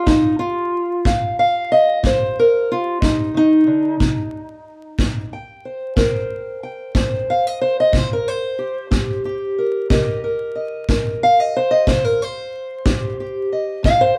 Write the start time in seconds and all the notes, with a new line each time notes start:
0.06 D#4, kick
0.39 F4
1.05 G#4 F5, kick
1.39 F5
1.72 D#5
2.03 F3 C5, kick
2.39 A#4
2.72 F4
3.02 F3 D#4, kick
3.34 D#3 D#4
3.67 D3
4.00 C3, kick
4.99 kick
5.33 G5
5.65 C5
5.96 C3 A#4 C5 G5, kick
6.63 G5
6.95 D#4 C5, kick
7.30 F5
7.47 D#5
7.61 C5
7.80 D#5
7.92 C3, kick
7.98 C5
8.13 A#4
8.28 C5
8.59 G4
8.91 D#4 G4, kick
9.25 G4
9.58 A#4
9.90 C3 G4 A#4 D#5, kick
10.24 A#4
10.55 D#5
10.89 D#4 A#4, kick
11.23 F5
11.40 D#5
11.56 C5
11.71 D#5
11.87 C3 C5, kick
12.04 A#4
12.22 C5
12.85 D#4 G4, kick
13.20 G4
13.52 D#5
13.83 C3 F5, kick
14.01 C5